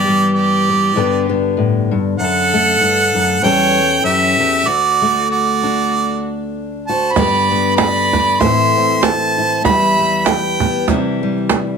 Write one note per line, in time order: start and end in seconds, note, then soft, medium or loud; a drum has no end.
0.00 0.92 G2 medium
0.00 0.92 E3 medium
0.00 0.68 B3 medium
0.00 0.31 G4 medium
0.00 0.93 G4 medium
0.00 0.30 D5 medium
0.07 0.96 G3 medium
0.35 1.28 G4 medium
0.35 1.27 D5 medium
0.69 0.96 B3 medium
0.95 1.90 G2 medium
0.95 3.42 D3 medium
0.95 1.28 B3 medium
0.95 2.17 D4 medium
0.95 2.18 G4 medium
1.29 2.16 B3 medium
1.57 1.92 A2 medium
1.91 2.18 G2 medium
2.19 2.80 F#2 medium
2.19 3.39 A4 loud
2.19 3.40 F#5 loud
2.53 3.43 A3 medium
2.80 3.14 G2 medium
3.15 3.42 F#2 medium
3.42 4.04 E2 medium
3.42 4.64 E3 medium
3.42 3.78 G3 medium
3.42 4.64 C#4 medium
3.42 4.65 A4 medium
3.42 4.02 C#5 medium
3.42 4.02 G5 loud
4.04 4.39 F#2 medium
4.04 4.68 G4 medium
4.04 4.69 E5 medium
4.39 4.66 E2 medium
4.66 7.15 D2 medium
4.66 5.29 F#4 medium
4.66 5.30 D5 loud
5.02 7.12 A3 medium
5.30 6.23 F#4 medium
5.30 6.23 D5 medium
5.63 7.12 D4 medium
6.88 7.13 F#4 medium
6.88 7.18 C5 medium
6.88 7.15 A5 medium
7.13 8.36 G2 medium
7.13 8.40 D3 medium
7.13 7.50 B3 medium
7.13 7.77 D5 medium
7.13 7.76 B5 loud
7.13 cajon bass loud
7.13 cajon slap soft
7.18 8.12 D4 medium
7.18 8.38 G4 medium
7.51 8.37 B3 medium
7.51 cajon slap soft
7.76 8.41 D5 medium
7.76 8.42 B5 medium
7.76 cajon slap loud
8.13 8.37 D4 medium
8.13 cajon bass medium
8.13 cajon slap soft
8.40 9.64 A2 medium
8.40 9.61 E3 medium
8.40 8.75 C4 medium
8.40 9.37 E4 medium
8.40 9.62 A4 medium
8.40 9.03 E5 medium
8.40 9.05 C6 loud
8.40 cajon bass medium
8.40 cajon slap soft
8.76 9.61 C4 medium
8.90 cajon slap soft
9.01 9.63 C5 medium
9.01 9.65 A5 medium
9.01 cajon slap loud
9.38 9.61 E4 medium
9.38 cajon slap soft
9.64 10.84 E2 medium
9.64 10.85 E3 medium
9.64 9.98 G3 medium
9.64 10.60 B3 medium
9.64 10.86 G4 medium
9.64 10.29 E5 loud
9.64 10.29 B5 loud
9.64 cajon bass medium
9.64 cajon slap soft
9.99 10.88 G3 medium
9.99 cajon slap soft
10.26 10.88 B4 medium
10.26 10.89 G5 medium
10.26 cajon slap medium
10.60 10.88 B3 medium
10.60 cajon bass medium
10.88 11.78 C3 medium
10.88 11.78 E3 medium
10.88 11.22 G3 medium
10.88 11.78 D4 medium
10.88 11.78 E4 medium
10.88 cajon bass medium
10.88 cajon slap soft
11.23 11.78 G3 medium
11.37 cajon slap soft
11.49 cajon slap loud